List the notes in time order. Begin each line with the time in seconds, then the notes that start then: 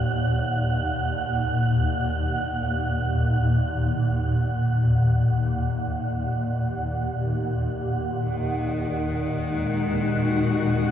Already playing: D#2 A#2 F#5
8.23 D#2 A#2 D#3 F#5
9.49 G#3
10.20 F#4
10.80 C#4